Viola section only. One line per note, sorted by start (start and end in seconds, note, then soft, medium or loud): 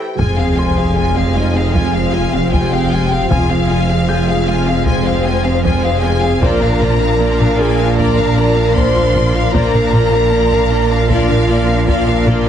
0.19 0.37 G#3 soft
0.19 0.37 F4 soft
0.38 0.58 C4 soft
0.38 0.58 G#4 soft
0.57 0.77 G#3 soft
0.57 0.77 F4 soft
0.77 0.97 C4 soft
0.77 0.97 G#4 soft
0.97 1.15 G#3 soft
0.97 1.15 F4 soft
1.16 1.36 C4 soft
1.16 1.36 G#4 soft
1.36 1.55 G#3 soft
1.36 1.55 F4 soft
1.55 1.75 C4 soft
1.55 1.75 G#4 soft
1.75 1.93 G#3 soft
1.75 1.93 F4 soft
1.94 2.14 C4 soft
1.94 2.14 G#4 soft
2.14 2.33 G#3 soft
2.14 2.33 F4 soft
2.33 2.53 C4 soft
2.33 2.53 G#4 soft
2.53 2.71 G#3 soft
2.53 2.71 F4 soft
2.72 2.92 C4 soft
2.72 2.92 G#4 soft
2.91 3.11 G#3 soft
2.91 3.11 F4 soft
3.11 3.31 C4 soft
3.11 3.31 G#4 soft
3.30 3.49 G#3 medium
3.30 3.49 F4 medium
3.50 3.70 C4 soft
3.50 3.70 G#4 soft
3.70 3.89 G#3 soft
3.70 3.89 F4 soft
3.89 4.09 C4 soft
3.89 4.09 G#4 soft
4.09 4.27 G#3 soft
4.09 4.27 F4 medium
4.28 4.48 C4 soft
4.28 4.48 G#4 soft
4.48 4.67 G#3 soft
4.48 4.67 F4 soft
4.67 4.87 C4 soft
4.67 4.87 G#4 soft
4.87 5.05 G#3 medium
4.87 5.05 F4 medium
5.06 5.26 C4 soft
5.06 5.26 G#4 soft
5.26 5.45 G#3 soft
5.26 5.45 F4 medium
5.46 5.65 C4 soft
5.46 5.65 G#4 soft
5.64 5.83 G#3 medium
5.64 5.83 F4 medium
5.84 6.03 C4 medium
5.84 6.03 G#4 medium
6.03 6.23 G#3 medium
6.03 6.23 F4 medium
6.23 6.42 C4 medium
6.23 6.42 G#4 medium
6.42 6.60 A#3 medium
6.42 6.60 F4 medium
6.61 6.81 D4 medium
6.61 6.81 A#4 medium
6.81 7.01 A#3 medium
6.81 7.01 F4 medium
7.00 7.20 D4 medium
7.00 7.20 A#4 medium
7.20 7.38 A#3 medium
7.20 7.38 F4 medium
7.40 7.59 D4 medium
7.40 7.59 A#4 medium
7.59 7.78 A#3 medium
7.59 7.78 F4 medium
7.78 7.98 D4 medium
7.78 7.98 A#4 medium
7.98 8.16 A#3 medium
7.98 8.16 F4 medium
8.17 8.37 D4 medium
8.17 8.37 A#4 medium
8.37 8.56 A#3 medium
8.37 8.57 F4 medium
8.56 8.76 D4 medium
8.56 8.76 A#4 medium
8.76 8.94 A#3 medium
8.76 8.94 F4 medium
8.95 9.15 D4 medium
8.95 9.15 A#4 medium
9.15 9.34 A#3 medium
9.15 9.34 F4 medium
9.34 9.54 D4 medium
9.34 9.54 A#4 medium
9.54 9.72 A#3 medium
9.54 9.72 F4 medium
9.74 9.93 D4 medium
9.74 9.93 A#4 medium
9.93 10.13 A#3 medium
9.93 10.13 F4 medium
10.13 10.32 D4 medium
10.13 10.32 A#4 medium
10.32 10.50 A#3 medium
10.32 10.50 F4 medium
10.51 10.71 D4 medium
10.51 10.71 A#4 medium
10.71 10.90 A#3 medium
10.71 10.91 F4 medium
10.90 11.10 D4 medium
10.90 11.10 A#4 medium
11.10 11.28 A#3 medium
11.10 11.28 F4 medium
11.29 11.49 D4 medium
11.29 11.49 A#4 medium
11.49 11.68 A#3 medium
11.49 11.68 F4 medium
11.68 11.88 D4 medium
11.68 11.88 A#4 medium
11.88 12.06 A#3 medium
11.88 12.06 F4 medium
12.07 12.27 D4 medium
12.07 12.27 A#4 medium
12.27 12.46 A#3 medium
12.27 12.47 F4 medium